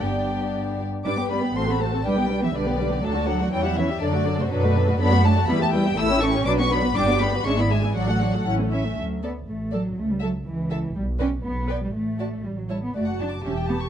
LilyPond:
<<
  \new Staff \with { instrumentName = "Violin section" } { \time 2/4 \key g \major \tempo 4 = 122 g''4 r4 | d'''8 b''8 c'''16 b''16 a''8 | g''8. e''16 d''4 | a''8 fis''8 g''16 fis''16 e''8 |
d''8. c''16 b'4 | \key d \major b''8 a''8 b''16 a''16 g''8 | e'''8 cis'''8 d'''16 cis'''16 b''8 | d'''8 b''8 cis'''16 b''16 gis''8 |
fis''4 r4 | r8 a''8 r8 a''8 | r8 a''8 r8 a''8 | r8 g''8 r8 g''8 |
r8 a''8 r8 a''8 | a''2 | }
  \new Staff \with { instrumentName = "Violin section" } { \time 2/4 \key g \major <g' d''>4. r8 | <b' d''>16 <g' b'>16 <b' d''>16 <g' b'>16 <a' c''>16 <fis' a'>16 <a' c''>16 <fis' a'>16 | <b' d''>16 <g' b'>16 <b' d''>16 <g' b'>16 <b' d''>16 <g' b'>16 <b' d''>16 <g' b'>16 | a'16 <fis' d''>16 a'16 <fis' d''>16 <e' cis''>16 <g' e''>16 <e' cis''>16 <g' e''>16 |
a'16 <fis' d''>16 a'16 <fis' d''>16 a'16 <fis' d''>16 a'16 <fis' d''>16 | \key d \major <a' d''>16 <fis' fis''>16 <a' d''>16 <fis' fis''>16 <e' b'>16 <g' e''>16 <e' b'>16 <g' e''>16 | a'16 <g' cis''>16 a'16 <g' cis''>16 <b' d''>16 <fis' b'>16 <b' d''>16 <fis' b'>16 | <g' d''>16 <fis' b'>16 <g' d''>16 <fis' b'>16 <gis' e''>16 <e' d''>16 <gis' e''>16 <e' d''>16 |
<fis' d''>16 <a' fis''>16 <fis' d''>16 <a' fis''>16 fis''8 e''8 | r8 d''8 r8 d''8 | r8 e''8 r8 e''8 | r8 d''8 r8 d''8 |
r8 d''8 r8 cis''8 | d''16 fis''16 a''16 d'''16 e''16 g''16 a''16 cis'''16 | }
  \new Staff \with { instrumentName = "Viola section" } { \time 2/4 \key g \major <b d'>4. r8 | <g d'>16 b16 <g d'>16 b16 <a fis'>16 <c' a'>16 <a fis'>16 <c' a'>16 | <g d'>16 b16 <g d'>16 b16 <g d'>16 b16 <g d'>16 b16 | <fis d'>16 <a fis'>16 <fis d'>16 <a fis'>16 <e cis'>16 <g e'>16 <e cis'>16 <g e'>16 |
<fis d'>16 <a fis'>16 <fis d'>16 <a fis'>16 <fis d'>16 <a fis'>16 <fis d'>16 <a fis'>16 | \key d \major <fis d'>16 <a fis'>16 <fis d'>16 <a fis'>16 <g e'>16 <b g'>16 <g e'>16 <b g'>16 | <a e'>16 cis'16 <a e'>16 cis'16 <fis d'>16 b16 <fis d'>16 b16 | <g d'>16 <b g'>16 <g d'>16 <b g'>16 <gis d'>16 <b e'>16 <gis d'>16 <b e'>16 |
<fis d'>16 <a fis'>16 <fis d'>16 <a fis'>16 <cis' e'>16 <a cis'>16 <cis' e'>16 <a cis'>16 | r8 a'8 r8 a'8 | r8 a'8 r8 a'8 | r8 b'8 r8 b'8 |
r8 fis'8 r8 e'8 | fis'4 g'4 | }
  \new Staff \with { instrumentName = "Cello section" } { \time 2/4 \key g \major g,4. r8 | d'8 b8 c'16 b16 a8 | g8. e16 d4 | a8 fis8 g16 fis16 e8 |
d8. c16 b,4 | \key d \major b8 a8 b16 a16 g8 | e'8 cis'8 d'16 cis'16 b8 | d'8 b8 cis'16 b16 gis8 |
fis4 r4 | fis8 b8 a8 fis8 | a16 g16 fis8 e4 | g8 cis'8 b8. g16 |
a4 g16 fis16 g16 b16 | a8 d'8 cis'8 b8 | }
  \new Staff \with { instrumentName = "Double bass section" } { \clef bass \time 2/4 \key g \major g,,4. r8 | g,4 a,,4 | b,,4 b,,4 | d,4 e,4 |
fis,4 fis,4 | \key d \major fis,4 e,4 | a,,4 b,,4 | g,,4 gis,,4 |
a,,4 a,,4 | d,4 a,,4 | cis,4 cis,4 | b,,4 b,,4 |
a,,4 a,,4 | fis,,4 e,,4 | }
>>